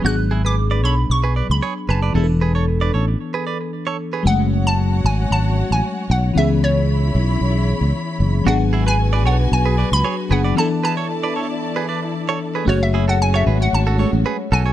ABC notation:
X:1
M:4/4
L:1/16
Q:1/4=114
K:F#m
V:1 name="Synth pluck"
f'3 d'3 b2 c'3 b3 a2- | a2 z12 z2 | f3 a3 g2 a3 g3 f2 | e2 c8 z6 |
f3 g3 f2 g3 b3 f2 | a2 a8 z6 | c e2 f g e2 f a6 g2 |]
V:2 name="String section"
z16 | z16 | [Fcf]16 | [Ecb]16 |
[FBg]16 | [Eda]16 | [F,CF]16 |]
V:3 name="Clean electric guitar"
[DF] z [EG] [GB] z [Bd] [Ac] z2 [GB] [Bd] z [Gc] z [GB] [Bd] | [EA] z [GB] [Ac] z [Bd] [Ac] z2 [GB] [Bd] z2 [Ac] z [GB] | z16 | z16 |
[DF] z [EG] [GB] z [Bd] [Ac] z2 [GB] [Bd] z [Gc] z [GB] [Bd] | [EA] z [GB] [Ac] z [Bd] [Ac] z2 [GB] [Bd] z2 [Ac] z [GB] | [CF] z [EG] [FA] z [Ac] [GB] z2 [FA] [Ac] z [GB] z [FA] [Ac] |]
V:4 name="FM electric piano"
[F,B,DG]16 | [E,B,DGA]16 | [F,G,A,C]16 | [E,B,CG]16 |
[F,B,DG]12- [F,B,DG]2 [F,B,DG]2 | [E,B,DA]16 | [A,CFGc]8- [A,CFGc]2 [G,A,CFc]6 |]
V:5 name="Fingered electric bass" clef=bass
G,,,6 B,,,2 B,,,3 C,, z2 F,,,2 | E,,,6 A,,,2 z8 | F,,,6 G,,,2 G,,,3 A,,, z2 B,,,2 | C,,6 B,,,2 B,,,3 C,, z2 F,,,2 |
G,,,6 B,,,2 B,,,3 C,, z2 F,,,2 | z16 | F,,,6 G,,,2 G,,,3 A,,, z2 B,,,2 |]